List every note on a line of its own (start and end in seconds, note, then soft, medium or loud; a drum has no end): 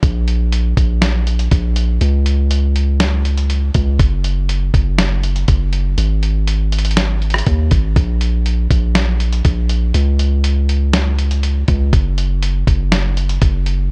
0.03 0.74 A#1 loud
0.03 kick loud
0.03 closed hi-hat medium
0.28 closed hi-hat medium
0.52 closed hi-hat medium
0.77 1.49 A#1 loud
0.77 kick medium
0.77 closed hi-hat medium
1.02 snare loud
1.02 closed hi-hat medium
1.27 closed hi-hat medium
1.39 closed hi-hat medium
1.51 1.99 A#1 loud
1.51 kick loud
1.51 closed hi-hat medium
1.76 closed hi-hat medium
2.01 3.71 C#2 loud
2.01 closed hi-hat medium
2.26 closed hi-hat medium
2.51 closed hi-hat medium
2.76 closed hi-hat medium
3.00 snare loud
3.00 closed hi-hat medium
3.25 closed hi-hat medium
3.38 closed hi-hat medium
3.50 closed hi-hat medium
3.74 3.99 C#2 loud
3.74 kick medium
3.74 closed hi-hat medium
3.99 4.71 F#1 loud
3.99 kick loud
3.99 closed hi-hat medium
4.24 closed hi-hat medium
4.49 closed hi-hat medium
4.74 5.45 F#1 loud
4.74 kick medium
4.74 closed hi-hat medium
4.98 snare loud
4.98 closed hi-hat medium
5.23 closed hi-hat medium
5.36 closed hi-hat medium
5.48 5.96 F#1 loud
5.48 kick loud
5.48 closed hi-hat medium
5.73 closed hi-hat medium
5.98 7.43 G#1 loud
5.98 closed hi-hat medium
6.23 closed hi-hat medium
6.48 closed hi-hat medium
6.72 closed hi-hat medium
6.79 closed hi-hat medium
6.85 closed hi-hat medium
6.91 closed hi-hat medium
6.97 snare loud
6.97 closed hi-hat medium
7.22 closed hi-hat soft
7.30 cross-stick loud
7.30 closed hi-hat medium
7.38 closed hi-hat medium
7.46 7.70 D#2 loud
7.46 kick loud
7.46 closed hi-hat medium
7.71 7.95 G#1 loud
7.71 kick medium
7.71 closed hi-hat medium
7.96 8.68 A#1 loud
7.96 kick loud
7.96 closed hi-hat medium
8.21 closed hi-hat medium
8.46 closed hi-hat medium
8.71 9.42 A#1 loud
8.71 kick medium
8.71 closed hi-hat medium
8.95 snare loud
8.95 closed hi-hat medium
9.20 closed hi-hat medium
9.33 closed hi-hat medium
9.45 9.93 A#1 loud
9.45 kick loud
9.45 closed hi-hat medium
9.69 closed hi-hat medium
9.94 11.64 C#2 loud
9.94 closed hi-hat medium
10.19 closed hi-hat medium
10.44 closed hi-hat medium
10.69 closed hi-hat medium
10.93 snare loud
10.93 closed hi-hat medium
11.19 closed hi-hat medium
11.31 closed hi-hat medium
11.43 closed hi-hat medium
11.68 11.92 C#2 loud
11.68 kick medium
11.68 closed hi-hat medium
11.93 12.64 F#1 loud
11.93 kick loud
11.93 closed hi-hat medium
12.18 closed hi-hat medium
12.43 closed hi-hat medium
12.67 13.39 F#1 loud
12.67 kick medium
12.67 closed hi-hat medium
12.92 snare loud
12.92 closed hi-hat medium
13.17 closed hi-hat medium
13.29 closed hi-hat medium
13.42 13.89 F#1 loud
13.42 kick loud
13.42 closed hi-hat medium
13.66 closed hi-hat medium